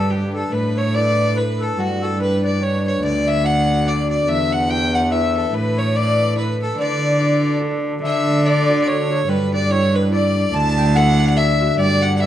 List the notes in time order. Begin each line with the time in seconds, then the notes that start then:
Already playing: G2 G3 A3 G4 A4 B4
0.10 D4 G4 B4
0.34 A4
0.52 A2 A3 B4
0.77 C#5
0.94 E4 A4 B4 D5
1.35 E4 A4 B4
1.60 A4
1.77 G2 G3 F#4
2.01 A4
2.19 D4 G4 B4
2.43 D5
2.60 D4 G4 B4 C#5
2.85 C#5
3.02 D2 D3 D5
3.27 E5
3.44 D4 F#4 A4 F#5
3.85 D4 F#4 A4 D5
4.10 D5
4.28 E2 E3 E5
4.51 F#5
4.69 E4 G4 B4 G5
4.93 F#5
5.11 E4 G4 B4 E5
5.36 A4
5.53 A2 A3 B4
5.77 C#5
5.93 E4 A4 B4 D5
6.36 E4 A4 B4
6.61 A4
6.78 D3 D5
7.20 D4 F#4 A4
7.61 D4 F#4 A4
8.03 D3 E5
8.28 A3
8.45 A4 D5
8.69 F#4
8.82 D5
8.87 A4 C#5
9.10 F#4 C#5
9.28 G2 G3 B4
9.53 D4 D5
9.70 E4 C#5
9.94 D4 B4
10.12 E4 D5
10.37 D4
10.53 D2 D3 A5
10.78 A3 G5
10.95 A4 F#5
11.20 F#4
11.37 A4 E5
11.61 F#4
11.78 G2 G3 D5
12.02 D4 F#5
12.16 F#5
12.20 B4 E5